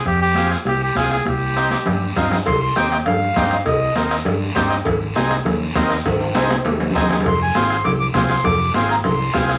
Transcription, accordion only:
X:1
M:4/4
L:1/8
Q:1/4=200
K:Cm
V:1 name="Accordion"
z8 | z8 | c' c' g g f4 | e2 z6 |
z8 | z8 | c' a c'2 d' d' c' c' | d'2 c' b c'2 z2 |]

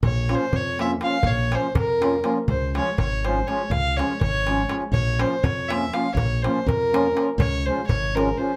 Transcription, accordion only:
X:1
M:5/8
L:1/8
Q:1/4=122
K:Bbm
V:1 name="Accordion"
z [F,B,DF] z [F,B,DF] [F,B,DF] | z [F,B,DF] z [F,B,DF] [F,B,DF] | z [F,A,DF] z [F,A,DF] [F,A,DF] | z [F,A,DF] z [F,A,DF] [F,A,DF] |
z [F,B,DF] z [F,B,DF] [F,B,DF] | z [F,B,DF] z [F,B,DF] [F,B,DF] | z [F,A,DF] z [F,A,DF] [F,A,DF] |]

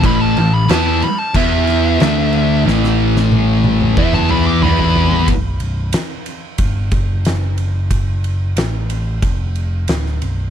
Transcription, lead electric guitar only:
X:1
M:4/4
L:1/16
Q:1/4=92
K:Glyd
V:1 name="Lead electric guitar"
b a a b a a b a e8 | z8 e a b d' b4 | z16 | z16 |]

